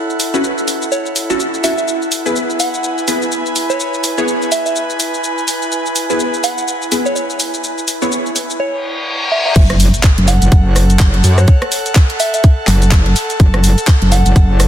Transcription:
Already playing: E4 A4 F#5
0.10 shaker
0.20 open hi-hat, shaker
0.34 C#4 E4 F#4 B4, shaker
0.44 shaker
0.58 shaker
0.68 open hi-hat, shaker
0.82 shaker
0.92 C#5, shaker
1.06 shaker
1.16 open hi-hat, shaker
1.30 C#4 E4 F#4 A4, shaker
1.40 shaker
1.54 shaker
1.64 C#4 E4 F#4 A4 E5, open hi-hat, shaker
1.78 E5, shaker
1.88 shaker
2.00 B4, shaker
2.12 open hi-hat, shaker
2.26 B3 E4 G#4 B4, shaker
2.35 G#5, shaker
2.50 shaker
2.60 F#5, open hi-hat, shaker
2.74 shaker
2.84 shaker
2.98 shaker
3.08 B3 E4 G#4 B4, open hi-hat, shaker
3.22 shaker
3.32 shaker
3.46 shaker
3.56 open hi-hat, shaker
3.70 C#5, shaker
3.80 shaker
3.94 shaker
4.04 open hi-hat, shaker
4.18 B3 E4 G#4 C#5, shaker
4.28 shaker
4.42 shaker
4.52 E5, open hi-hat, shaker
4.66 E5, shaker
4.76 shaker
4.90 shaker
5.00 open hi-hat, shaker
5.14 shaker
5.24 shaker
5.38 shaker
5.48 open hi-hat, shaker
5.62 shaker
5.72 shaker
5.86 shaker
5.96 open hi-hat, shaker
6.10 B3 E4 G#4 B4, shaker
6.20 shaker
6.34 shaker
6.44 F#5, open hi-hat, shaker
6.58 shaker
6.68 shaker
6.82 shaker
6.92 B3 E4 G#4 B4, open hi-hat, shaker
7.06 C#5, shaker
7.16 C#5, shaker
7.30 shaker
7.40 open hi-hat, shaker
7.54 shaker
7.64 shaker
7.78 shaker
7.88 open hi-hat, shaker
8.02 B3 E4 G#4 C#5, shaker
8.12 shaker
8.26 shaker
8.36 open hi-hat, shaker
8.50 shaker
8.60 C#5, reverse cymbal
9.32 E5
9.46 E5
9.56 F#1, kick, closed hi-hat, crash, impact, shaker
9.70 cross-stick, closed hi-hat
9.80 open hi-hat, shaker
9.93 A4, closed hi-hat, shaker
9.98 F#5
10.03 kick, clap, closed hi-hat, shaker
10.18 F#1, closed hi-hat
10.28 F#5, open hi-hat, shaker
10.42 F#1, closed hi-hat, shaker
10.52 F#1, kick, closed hi-hat, shaker
10.76 cross-stick, open hi-hat, shaker
10.90 closed hi-hat, shaker
10.99 F#1, kick, clap, closed hi-hat, shaker
11.14 closed hi-hat
11.24 F#2, open hi-hat, shaker
11.38 C#5, cross-stick, shaker
11.48 kick, closed hi-hat, shaker
11.62 cross-stick, closed hi-hat
11.72 open hi-hat, shaker
11.86 closed hi-hat, shaker
11.95 kick, clap, closed hi-hat, shaker
12.10 closed hi-hat
12.20 E5, open hi-hat, shaker
12.34 E5, closed hi-hat, shaker
12.44 kick, closed hi-hat, shaker
12.67 F#1, clap, open hi-hat, shaker
12.82 closed hi-hat, shaker
12.91 kick, clap, closed hi-hat, shaker
13.06 closed hi-hat
13.16 open hi-hat, shaker
13.30 closed hi-hat, shaker
13.40 F#1, kick, closed hi-hat, shaker
13.54 cross-stick, closed hi-hat
13.64 open hi-hat, shaker
13.78 closed hi-hat, shaker
13.87 kick, clap, closed hi-hat, shaker
14.02 F#1, closed hi-hat
14.12 F#5, open hi-hat, shaker
14.26 F#1, closed hi-hat, shaker
14.36 F#1, kick, closed hi-hat, shaker
14.40 E5
14.60 cross-stick, open hi-hat, shaker

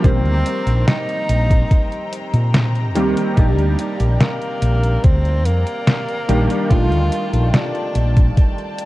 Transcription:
Already playing: G5 A#5
0.03 A#1 C3 D#3 G3 A#3 C4 G4 C5, kick, closed hi-hat
0.25 D2, closed hi-hat
0.46 closed hi-hat
0.67 A#1, closed hi-hat
0.88 D#4, snare, closed hi-hat
1.09 closed hi-hat
1.29 A#1, closed hi-hat
1.50 kick, closed hi-hat
1.71 kick, closed hi-hat
1.92 closed hi-hat
2.13 closed hi-hat
2.34 A#2, closed hi-hat
2.54 snare, closed hi-hat
2.75 closed hi-hat
2.95 D2 D#3 G3 A#3 C4 G4, closed hi-hat
3.17 closed hi-hat
3.37 A#1 G3 A#3 D4 D#4 G4 D5 G5, kick, closed hi-hat
3.58 D2, closed hi-hat
3.79 closed hi-hat
4.00 A#1, closed hi-hat
4.20 A#3, snare, closed hi-hat
4.42 closed hi-hat
4.62 A#1, closed hi-hat
4.83 closed hi-hat
5.04 D2 C4, kick, closed hi-hat
5.25 closed hi-hat
5.45 F2 A#3, closed hi-hat
5.67 closed hi-hat
5.87 snare, closed hi-hat
6.08 closed hi-hat
6.28 A#1 D#3 G3 A#3 D4 G4, closed hi-hat
6.50 closed hi-hat
6.69 A#1 D#3 G3 A3 D4 F4 A5, kick, closed hi-hat
6.92 D2, closed hi-hat
7.12 closed hi-hat
7.33 A#1, closed hi-hat
7.54 D4, snare, closed hi-hat
7.75 closed hi-hat
7.95 A#1, closed hi-hat
8.17 kick, closed hi-hat
8.37 kick, closed hi-hat
8.58 closed hi-hat
8.79 closed hi-hat

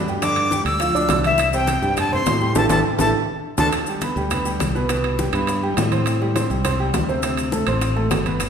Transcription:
Already playing: G2
0.07 G3 G4 G5, high conga, maracas
0.22 D3 D4 D5 D6, high bongo, high conga, high timbale, maracas
0.36 high bongo, high conga, high timbale
0.51 G3 G4 G5, high bongo, high conga, maracas
0.65 D2 E6, high bongo, high timbale, maracas
0.80 F3 F4 F5, high bongo, high timbale, maracas
0.94 D2 D4 D5 D6, high bongo, high conga, maracas
1.09 C2, high bongo, low bongo, high conga, high timbale, low timbale, maracas
1.24 E3 E4 E5, high conga, high timbale, maracas
1.38 high bongo, high conga, high timbale, maracas
1.53 C3 C4 C5 G5, high bongo, high conga, maracas
1.67 high bongo, high conga, high timbale, maracas
1.82 G2 G3 G4 G5, high bongo, high conga, maracas
1.97 A5, high bongo, high conga, low conga, high timbale, maracas
2.12 C4 C5 C6, high bongo, high conga, low conga
2.26 A2, high bongo, low bongo, high conga, high timbale, low timbale, maracas
2.40 G3 G4 G5, high conga, maracas
2.55 A1 E4 G4 A4 A5, low bongo, high conga, high timbale, maracas
2.69 A1 E4 G4 A4 A5, low bongo, high conga, high timbale, maracas
2.99 A1 E4 G4 A4 A5, low bongo, high conga, high timbale, maracas
3.58 D2 D4 F#4 A4 A5, low bongo, high conga, high timbale, maracas
3.72 high bongo, high conga, high timbale, maracas
3.86 G3 G4 G5, high bongo, high conga, maracas
4.01 B3 B4 B5, high bongo, high conga, high timbale, maracas
4.16 D2 G3 G4 G5, high bongo, high conga, maracas
4.31 B3 B4 B5, high bongo, high conga, low conga, high timbale, maracas
4.45 G3 G4 G5, high bongo, high conga, maracas
4.60 C2, high bongo, low bongo, high conga, high timbale, maracas
4.75 B2 B3 B4, high conga, maracas
4.89 B2 B3 B4, high bongo, high conga, high timbale, maracas
5.04 high bongo, high conga, high timbale
5.19 G3 G4 G5, high bongo, high conga, maracas
5.33 G2 B3 B4 B5, high bongo, high timbale, maracas
5.47 high bongo, high conga, high timbale, maracas
5.63 G3 G4 G5, high bongo, high conga
5.77 A2, high bongo, low bongo, high conga, high timbale, low timbale, maracas
5.91 C4 C5 C6, high conga, high timbale, maracas
6.06 high bongo, high conga, high timbale, maracas
6.21 G3 G4 G5, high bongo, high conga
6.36 C4 C5 C6, high bongo, high conga, high timbale, maracas
6.50 C2 G3 G4 G5, high bongo, high conga, maracas
6.65 C4 C5 C6, high bongo, high conga, low conga, high timbale, maracas
6.79 G3 G4 G5, high bongo, high conga
6.94 D2, high bongo, low bongo, high conga, high timbale, low timbale, maracas
7.08 C3 C4 C5, high conga, maracas
7.23 C3 C4 C5, high bongo, high conga, high timbale, maracas
7.37 high bongo, high conga, high timbale, maracas
7.52 A3 A4 A5, high bongo, high conga, maracas
7.67 A1 C4 C5 C6, high bongo, high timbale, maracas
7.81 high bongo, high timbale, maracas
7.96 A3 A4 A5, high bongo, high conga
8.11 G1, high bongo, low bongo, high conga, high timbale, low timbale, maracas
8.26 B3 B4 B5, high conga, high timbale, maracas
8.40 high bongo, high conga, high timbale, maracas

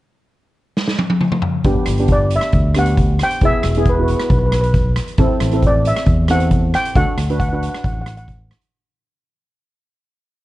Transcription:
0.77 snare
0.88 snare
0.98 high tom
1.10 high tom
1.21 mid tom
1.32 mid tom
1.42 floor tom
1.64 G1 B3 D4 G4, kick, closed hi-hat
1.86 G1, cross-stick, closed hi-hat
1.98 B3 D4 G4, closed hi-hat
2.08 kick, closed hi-hat
2.12 D5
2.31 closed hi-hat
2.36 E5
2.41 cross-stick, closed hi-hat
2.52 D2, kick, closed hi-hat
2.75 B3 D4 G4, cross-stick, closed hi-hat
2.79 F#5
2.86 closed hi-hat
2.97 kick, closed hi-hat
3.19 cross-stick, closed hi-hat
3.23 G5
3.31 closed hi-hat
3.41 E1 B3 E4 G#4, kick, closed hi-hat
3.45 E5
3.63 E1, cross-stick, closed hi-hat
3.75 B3 E4 G#4, closed hi-hat
3.85 B4, kick, closed hi-hat
3.95 B3 E4 F#4 B4
4.03 B4
4.08 B4, closed hi-hat
4.17 B4, cross-stick, closed hi-hat
4.24 B4
4.30 B1 B4, kick, closed hi-hat
4.39 B4
4.46 B4
4.52 B4, cross-stick, closed hi-hat
4.61 B4, closed hi-hat
4.74 kick, closed hi-hat
4.96 cross-stick, closed hi-hat
5.08 closed hi-hat
5.18 A1 C4 E4 A4, kick, closed hi-hat
5.40 A1, cross-stick, closed hi-hat
5.51 C4 E4 A4, closed hi-hat
5.62 kick, closed hi-hat
5.67 D5
5.85 E5, closed hi-hat
5.97 cross-stick, closed hi-hat
6.06 E2, kick, closed hi-hat
6.28 C4 E4 A4 F#5, cross-stick, closed hi-hat
6.40 closed hi-hat
6.51 kick, closed hi-hat
6.74 G5, cross-stick, closed hi-hat
6.85 closed hi-hat
6.96 D2 D4 F#4 A4 F#5, kick, closed hi-hat
7.17 D2, cross-stick, closed hi-hat
7.30 D4 F#4 B4, closed hi-hat
7.40 F#5, kick, closed hi-hat
7.49 D4 B4 F#5
7.53 F#4 F#5
7.63 F#5, closed hi-hat
7.70 F#5
7.75 F#5, cross-stick, closed hi-hat
7.84 A1 F#5, kick, closed hi-hat
7.93 F#5
8.02 F#5
8.06 F#5, cross-stick, closed hi-hat
8.17 F#5, closed hi-hat
8.28 kick, closed hi-hat
8.51 cross-stick, closed hi-hat
8.62 closed hi-hat

